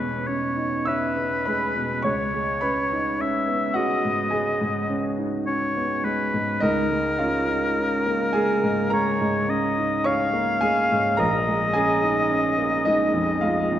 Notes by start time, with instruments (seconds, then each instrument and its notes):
Already playing: grand piano B2 G#3 B3 C#4 D#4 B4 C#5 B5 C#6, oboe B4
0.27 grand piano C#4, oboe C#5
0.57 grand piano D#4
0.85 grand piano C#4 E5 E6, oboe B4
1.17 grand piano B3
1.45 grand piano G#3 B4 B5
1.76 grand piano B2
2.02 grand piano C#2 C#5 C#6, oboe C#5
2.34 grand piano G#3
2.61 grand piano C#4 B4 B5
2.92 grand piano D#4
3.21 grand piano C#4, oboe E5
3.48 grand piano B3
3.74 grand piano G#3 F#4 F#5, oboe D#5
4.05 grand piano G#2
4.31 grand piano G#3 G#4 G#5
4.61 grand piano G#2
4.89 grand piano C#4
5.18 grand piano D#4
5.46 grand piano C#4, oboe C#5
5.77 grand piano B3
6.04 grand piano G#3, oboe B4
6.34 grand piano G#2
6.60 grand piano C#2 D#4 D#5, oboe A#4
6.91 grand piano G#3
7.19 grand piano C#4 F4 F5
7.49 grand piano D#4
7.79 grand piano C#4
8.06 grand piano A#3
8.33 grand piano G#3 G#4 G#5
8.63 grand piano G#2
8.90 grand piano G#3 A#4 A#5, oboe C#5
9.21 grand piano G#2
9.48 grand piano C#4, oboe D#5
9.78 grand piano D#4
10.04 grand piano C#4 C#5 C#6, oboe F5
10.33 grand piano A#3
10.61 grand piano G#3 G#4 G#5
10.92 grand piano G#2
11.17 grand piano A#1 A#4 A#5, oboe D#5
11.48 grand piano G#3
11.73 grand piano C#4 G#4 G#5
12.03 grand piano D#4
12.31 grand piano C#4
12.58 grand piano A#3
12.85 grand piano G#3 D#4 D#5
13.14 grand piano F2
13.41 grand piano G#3 F4 F5
13.72 grand piano F2